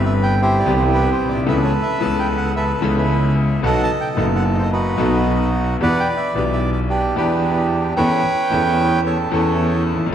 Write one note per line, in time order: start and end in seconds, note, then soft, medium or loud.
0.00 0.62 G1 medium
0.00 0.63 G1 loud
0.00 0.63 G2 medium
0.00 0.62 E3 medium
0.00 0.62 B3 medium
0.00 0.63 C4 medium
0.00 0.64 G4 medium
0.00 0.35 B4 loud
0.06 0.13 E5 loud
0.23 0.41 G5 loud
0.42 1.45 E4 medium
0.42 1.45 G4 medium
0.42 0.59 C5 loud
0.59 0.75 D5 loud
0.64 1.40 C2 loud
0.64 1.21 C2 loud
0.64 1.43 C3 medium
0.64 1.42 E3 medium
0.64 1.43 B3 medium
0.64 1.44 C4 medium
0.68 1.44 G4 medium
0.76 0.84 C5 medium
0.94 1.11 B4 loud
1.13 1.29 C5 medium
1.21 1.47 B1 medium
1.27 1.34 A#1 medium
1.27 1.46 D5 medium
1.35 1.41 B1 medium
1.42 1.48 C2 medium
1.46 1.69 C#2 medium
1.46 1.70 C#2 loud
1.46 1.70 C#3 medium
1.46 1.70 E3 medium
1.46 1.70 B3 medium
1.46 1.70 C#4 medium
1.46 1.70 A4 medium
1.46 2.52 A4 medium
1.46 2.52 B4 medium
1.46 1.56 E5 loud
1.64 1.73 C#5 loud
1.83 2.02 E5 loud
1.99 2.78 C#2 loud
1.99 2.79 C#2 medium
1.99 2.78 C#3 medium
1.99 2.77 E3 medium
1.99 2.78 B3 medium
1.99 2.79 C#4 medium
1.99 2.20 A5 loud
2.03 2.79 A4 medium
2.19 2.27 G5 medium
2.37 2.54 F#5 loud
2.56 2.73 A4 medium
2.56 2.96 B4 medium
2.56 2.64 E5 loud
2.74 2.84 A4 medium
2.80 3.59 C#2 loud
2.80 3.59 C#3 loud
2.80 3.58 E3 medium
2.80 3.59 B3 medium
2.80 3.59 C#4 medium
2.80 3.60 A4 loud
2.98 3.61 E4 medium
2.98 3.35 B4 medium
3.62 3.86 B1 loud
3.62 3.86 B1 medium
3.62 3.86 B2 loud
3.62 3.86 F#3 medium
3.62 3.86 B3 medium
3.62 3.86 D#4 medium
3.62 3.86 A4 medium
3.62 4.69 A4 medium
3.62 4.17 D#5 medium
3.62 3.82 F#5 loud
3.83 3.91 A5 loud
4.01 4.09 G5 loud
4.15 4.94 F#1 medium
4.15 4.95 F#1 loud
4.15 4.94 F#2 medium
4.15 4.93 F#3 medium
4.15 4.94 B3 medium
4.15 4.95 D#4 medium
4.15 4.95 A4 medium
4.15 4.26 D#5 loud
4.36 4.44 F#5 loud
4.55 4.63 C5 medium
4.55 4.56 D#5 medium
4.63 4.71 D#5 medium
4.72 5.77 D#4 medium
4.72 5.77 F#4 medium
4.72 5.50 B4 medium
4.96 5.76 B1 loud
4.96 5.76 B2 loud
4.96 5.75 F#3 medium
4.96 5.76 B3 medium
4.96 5.76 D#4 medium
4.96 5.77 A4 medium
5.80 6.03 E2 medium
5.80 6.03 E2 loud
5.80 6.04 E3 medium
5.80 6.03 B3 medium
5.80 6.03 D4 medium
5.80 6.03 G4 medium
5.80 6.35 B4 medium
5.80 6.71 D5 medium
5.80 6.00 F#5 loud
6.00 6.08 G5 loud
6.17 6.34 E5 loud
6.33 7.12 B1 loud
6.33 7.12 B1 medium
6.33 7.12 B2 medium
6.33 7.11 E3 medium
6.33 7.12 B3 medium
6.33 7.13 D4 medium
6.33 6.44 B4 medium
6.38 7.13 G4 medium
6.53 6.61 E5 medium
6.72 6.80 D5 medium
6.89 7.16 D4 medium
6.89 7.16 G4 medium
6.89 7.02 B4 medium
7.15 7.93 E2 medium
7.15 7.93 E2 loud
7.15 7.93 E3 loud
7.15 7.93 B3 medium
7.15 7.93 D4 medium
7.15 7.94 D4 medium
7.15 7.94 G4 medium
7.15 7.67 B4 medium
7.96 8.20 E2 loud
7.96 8.20 E2 medium
7.96 8.20 E3 medium
7.96 8.20 B3 medium
7.96 8.20 C#4 medium
7.96 8.20 A4 medium
7.96 9.01 B4 medium
7.96 9.01 C#5 loud
7.96 9.01 G5 loud
8.49 9.28 E2 medium
8.49 9.28 E2 loud
8.49 8.50 E3 medium
8.49 9.28 E3 medium
8.49 9.28 B3 medium
8.49 9.28 C#4 medium
8.49 9.29 A4 medium
9.06 9.32 A4 medium
9.06 9.18 C#5 loud
9.30 9.97 E2 loud
9.30 10.09 E2 loud
9.30 9.31 E3 medium
9.30 10.09 E3 loud
9.30 10.08 B3 medium
9.30 10.09 C#4 medium
9.30 10.10 A4 medium
9.34 9.83 C#5 medium
9.92 9.99 D#2 medium
9.99 10.06 E2 medium
10.06 10.13 F2 medium